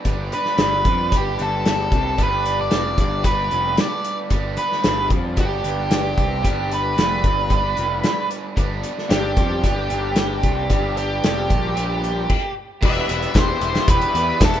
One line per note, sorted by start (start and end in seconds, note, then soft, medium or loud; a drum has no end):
0.00 12.26 B4 medium
0.00 12.26 D5 medium
0.00 12.26 G5 medium
0.00 12.26 D6 medium
0.05 0.30 G1 medium
0.05 0.27 G2 medium
0.05 1.12 G3 medium
0.05 1.13 B3 medium
0.05 1.13 D4 medium
0.05 1.14 G4 medium
0.05 kick medium
0.05 closed hi-hat medium
0.32 1.15 B4 medium
0.32 closed hi-hat medium
0.45 snare soft
0.57 0.83 G1 medium
0.57 0.84 G2 medium
0.57 snare loud
0.57 closed hi-hat medium
0.85 1.10 F2 medium
0.85 1.11 F3 medium
0.85 kick loud
0.85 closed hi-hat medium
1.12 1.37 G1 medium
1.12 1.33 G2 medium
1.12 2.17 G3 medium
1.12 2.19 B3 medium
1.12 2.19 D4 medium
1.12 2.21 G4 medium
1.12 kick medium
1.12 closed hi-hat medium
1.17 1.39 G4 medium
1.39 1.89 G1 medium
1.39 1.91 G2 medium
1.39 2.23 A4 medium
1.39 closed hi-hat soft
1.66 snare medium
1.66 closed hi-hat medium
1.91 2.17 C2 medium
1.91 2.17 C3 medium
1.91 kick medium
1.91 closed hi-hat medium
2.18 2.68 G1 medium
2.18 2.71 G2 medium
2.18 3.23 G3 medium
2.18 3.24 B3 medium
2.18 3.25 D4 medium
2.18 3.26 G4 medium
2.18 kick medium
2.18 closed hi-hat medium
2.22 2.60 B4 medium
2.46 closed hi-hat medium
2.61 2.99 D5 medium
2.71 2.97 F1 medium
2.71 2.98 F2 medium
2.71 snare medium
2.71 closed hi-hat medium
2.98 3.23 G1 medium
2.98 3.25 G2 medium
2.98 3.25 D5 medium
2.98 kick medium
2.98 closed hi-hat medium
3.23 3.50 G1 medium
3.23 3.47 G2 medium
3.23 4.30 G3 medium
3.23 4.31 B3 medium
3.23 4.32 D4 medium
3.23 4.33 G4 medium
3.23 3.80 B4 medium
3.23 kick medium
3.23 closed hi-hat medium
3.51 3.77 F1 medium
3.51 3.77 F2 medium
3.51 closed hi-hat medium
3.77 4.17 D5 medium
3.77 snare loud
3.77 closed hi-hat medium
4.05 closed hi-hat medium
4.30 4.56 G1 medium
4.30 4.52 G2 medium
4.30 5.36 G3 medium
4.30 5.38 B3 medium
4.30 5.38 D4 medium
4.30 5.39 G4 medium
4.30 kick medium
4.30 closed hi-hat medium
4.57 5.08 B4 loud
4.57 closed hi-hat medium
4.72 snare soft
4.84 5.10 G1 medium
4.84 5.11 G2 medium
4.84 snare loud
4.84 closed hi-hat medium
5.10 5.36 F2 medium
5.10 5.37 F3 medium
5.10 kick loud
5.10 closed hi-hat medium
5.36 5.63 G1 medium
5.36 5.59 G2 medium
5.36 6.42 G3 medium
5.36 6.43 B3 medium
5.36 6.44 D4 medium
5.36 6.45 G4 medium
5.36 6.73 G4 medium
5.36 kick medium
5.36 closed hi-hat medium
5.64 6.14 G1 medium
5.64 6.17 G2 medium
5.64 closed hi-hat medium
5.91 snare loud
5.91 closed hi-hat medium
6.17 6.43 C2 loud
6.17 6.44 C3 medium
6.17 kick medium
6.17 closed hi-hat soft
6.43 6.94 G1 medium
6.43 6.96 G2 medium
6.43 7.48 G3 medium
6.43 7.50 B3 medium
6.43 7.51 D4 medium
6.43 7.52 G4 medium
6.43 kick medium
6.43 closed hi-hat medium
6.72 8.28 B4 medium
6.72 closed hi-hat medium
6.97 7.22 F1 medium
6.97 7.23 F2 medium
6.97 snare medium
6.97 closed hi-hat medium
7.24 7.49 G1 medium
7.24 7.51 G2 medium
7.24 kick medium
7.24 closed hi-hat medium
7.49 7.76 G1 medium
7.49 8.55 G3 medium
7.49 8.56 B3 medium
7.49 8.58 D4 medium
7.49 kick medium
7.49 closed hi-hat medium
7.53 7.74 G2 medium
7.53 8.58 G4 medium
7.77 8.02 F1 medium
7.77 8.04 F2 medium
7.77 closed hi-hat soft
8.04 snare loud
8.04 closed hi-hat medium
8.31 closed hi-hat medium
8.56 8.82 G1 medium
8.56 8.79 G2 medium
8.56 9.63 G3 medium
8.56 9.64 B3 medium
8.56 9.65 D4 medium
8.56 9.66 G4 medium
8.56 kick medium
8.56 closed hi-hat medium
8.84 closed hi-hat medium
8.98 snare soft
9.10 9.36 G1 medium
9.10 9.36 G2 medium
9.10 10.97 G4 loud
9.10 snare loud
9.10 closed hi-hat medium
9.36 9.62 F2 medium
9.36 9.63 F3 loud
9.36 kick loud
9.36 closed hi-hat medium
9.63 9.89 G1 medium
9.63 9.85 G2 medium
9.63 10.68 G3 medium
9.63 10.69 B3 medium
9.63 10.69 D4 medium
9.63 10.70 G4 medium
9.63 kick medium
9.63 closed hi-hat medium
9.90 10.40 G1 medium
9.90 10.43 G2 medium
9.90 closed hi-hat medium
10.16 snare loud
10.16 closed hi-hat medium
10.43 10.68 C2 loud
10.43 10.71 C3 medium
10.43 kick medium
10.43 closed hi-hat medium
10.70 11.20 G1 medium
10.70 11.22 G2 medium
10.70 11.73 G3 medium
10.70 11.75 B3 medium
10.70 11.76 D4 medium
10.70 11.76 G4 medium
10.70 kick medium
10.70 closed hi-hat medium
10.97 12.52 G4 loud
10.97 closed hi-hat medium
11.24 11.49 F1 medium
11.24 11.50 F2 medium
11.24 snare loud
11.24 closed hi-hat medium
11.50 12.26 A#1 medium
11.50 12.29 A#2 medium
11.50 kick loud
11.50 closed hi-hat medium
11.75 12.27 G3 medium
11.75 12.28 B3 medium
11.75 12.28 D4 medium
11.75 12.28 G4 medium
11.75 closed hi-hat medium
12.04 closed hi-hat soft
12.30 kick medium
12.30 crash medium
12.81 12.99 E1 medium
12.81 13.06 E3 medium
12.81 13.09 E3 medium
12.81 13.07 G3 medium
12.81 13.09 B3 medium
12.81 13.11 B3 medium
12.81 13.08 E4 medium
12.81 13.10 E4 medium
12.81 14.60 G4 medium
12.81 13.12 G4 loud
12.81 13.32 B4 medium
12.81 13.12 B4 loud
12.81 14.60 E5 medium
12.81 14.60 B5 medium
12.81 14.60 E6 medium
12.81 kick loud
12.81 crash loud
12.86 13.38 E5 loud
13.07 13.26 E1 medium
13.07 13.32 E3 medium
13.07 13.34 E3 medium
13.07 13.34 G3 medium
13.07 13.34 B3 medium
13.07 13.36 B3 medium
13.07 13.34 E4 medium
13.07 13.35 E4 medium
13.07 closed hi-hat medium
13.12 13.36 G4 medium
13.12 13.37 B4 medium
13.23 closed hi-hat soft
13.33 13.52 E1 medium
13.33 13.59 E3 medium
13.33 13.60 G3 medium
13.33 13.61 B3 medium
13.33 13.61 E4 medium
13.33 13.62 G4 medium
13.33 kick loud
13.33 snare loud
13.33 clap medium
13.33 closed hi-hat loud
13.38 13.86 G4 medium
13.38 13.63 B4 medium
13.38 13.89 C5 medium
13.60 13.78 E1 medium
13.60 13.85 E3 medium
13.60 13.87 E3 medium
13.60 13.87 G3 medium
13.60 13.86 B3 medium
13.60 13.88 B3 medium
13.60 13.87 E4 loud
13.60 13.89 E4 medium
13.60 13.90 G4 medium
13.60 13.89 B4 medium
13.60 closed hi-hat medium
13.75 snare medium
13.75 closed hi-hat soft
13.87 14.05 E1 medium
13.87 14.13 E3 loud
13.87 14.13 E3 medium
13.87 14.14 G3 loud
13.87 14.13 B3 loud
13.87 14.13 B3 medium
13.87 14.14 E4 loud
13.87 14.15 G4 loud
13.87 14.38 G4 medium
13.87 14.43 B4 medium
13.87 14.15 B4 medium
13.87 kick loud
13.87 closed hi-hat loud
14.01 closed hi-hat soft
14.14 14.31 E2 medium
14.14 14.40 E3 medium
14.14 14.41 E3 medium
14.14 14.42 G3 medium
14.14 14.40 B3 medium
14.14 14.42 B3 medium
14.14 14.41 E4 medium
14.14 14.42 E4 medium
14.14 14.42 G4 medium
14.14 14.42 B4 medium
14.14 closed hi-hat medium
14.41 14.58 E1 medium
14.41 14.60 E3 medium
14.41 14.60 G3 medium
14.41 14.60 B3 loud
14.41 14.60 B3 medium
14.41 14.60 E4 medium
14.41 14.60 E4 loud
14.41 14.60 E4 medium
14.41 14.60 G4 medium
14.41 14.60 A4 medium
14.41 14.60 B4 medium
14.41 kick loud
14.41 snare loud
14.41 clap medium
14.41 closed hi-hat loud
14.54 closed hi-hat soft